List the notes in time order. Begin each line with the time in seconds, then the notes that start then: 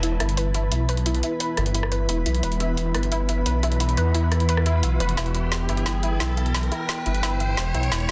Already playing: E1 E3 B3 E4 B4 E5 A5 B5, riser
0.03 E4, closed hi-hat
0.20 G1 E4, cross-stick, closed hi-hat
0.29 closed hi-hat
0.37 B4, closed hi-hat
0.54 E4, closed hi-hat
0.72 B1 E4, closed hi-hat
0.89 B4, closed hi-hat
0.97 closed hi-hat
1.06 E4, closed hi-hat
1.15 closed hi-hat
1.23 E4, closed hi-hat
1.40 B4, closed hi-hat
1.57 G1 E4, cross-stick, closed hi-hat
1.66 closed hi-hat
1.74 E4, closed hi-hat
1.83 cross-stick
1.92 B4, closed hi-hat
2.09 E1 E4, closed hi-hat
2.26 B1 E4, closed hi-hat
2.35 closed hi-hat
2.43 E1 B4, closed hi-hat
2.52 closed hi-hat
2.60 E4, closed hi-hat
2.77 E4, closed hi-hat
2.95 G1 B4, cross-stick, closed hi-hat
3.03 closed hi-hat
3.12 E4, closed hi-hat
3.29 E4, closed hi-hat
3.46 B1 B4, closed hi-hat
3.63 E4, closed hi-hat
3.72 closed hi-hat
3.80 E4, closed hi-hat
3.89 closed hi-hat
3.97 E2 B4, closed hi-hat
4.14 E4, closed hi-hat
4.32 E4, cross-stick, closed hi-hat
4.40 closed hi-hat
4.49 B4, closed hi-hat
4.57 cross-stick
4.66 E4, closed hi-hat
4.83 B1 E4, closed hi-hat
5.00 F1 B4, closed hi-hat
5.09 closed hi-hat
5.17 E1 E4 G5, snare, closed hi-hat
5.26 closed hi-hat
5.35 E4, closed hi-hat
5.52 E4, snare, closed hi-hat
5.69 G1 E4, closed hi-hat
5.77 closed hi-hat
5.86 E4, snare, closed hi-hat
6.03 E4, closed hi-hat
6.20 B1 E4, snare, closed hi-hat
6.37 E4, closed hi-hat
6.46 closed hi-hat
6.54 E4, snare, closed hi-hat
6.63 closed hi-hat
6.72 E4, closed hi-hat
6.89 E4, snare, closed hi-hat
7.06 G1 E4, closed hi-hat
7.15 closed hi-hat
7.23 E4, snare, closed hi-hat
7.40 E4, closed hi-hat
7.57 E1 E4, snare, closed hi-hat
7.74 B1 E4, closed hi-hat
7.83 closed hi-hat
7.92 E1 E4, snare, closed hi-hat
8.00 closed hi-hat